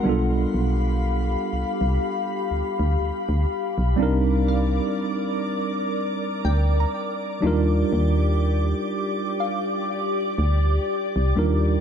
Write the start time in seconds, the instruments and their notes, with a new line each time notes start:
0.03 fm bass B1, tine electric piano G3 B3 D4, ambient pad G4 F5 B5
0.08 tine electric piano F4 A4
0.54 fm bass B1
1.53 fm bass C2
1.81 fm bass C2
2.51 fm bass D2
2.80 fm bass D2
3.00 fm bass D2
3.29 fm bass D2
3.78 fm bass B1
3.96 fm bass C2, tine electric piano G3 C4 D4, ambient pad A#4 D5 D6
4.01 tine electric piano D#4 A#4
4.48 synth pluck F5
6.45 fm bass D2, synth pluck G5
6.80 synth pluck A#5
7.41 fm bass D#2, tine electric piano F#3 D4 D#4, ambient pad G4 D6
7.45 tine electric piano G3 F4 A#4
7.93 fm bass D#2
9.40 ambient pad D5, synth pluck F5
10.38 fm bass D2
11.16 fm bass C2
11.36 fm bass D#2, tine electric piano G3 D4 D#4 F4 A#4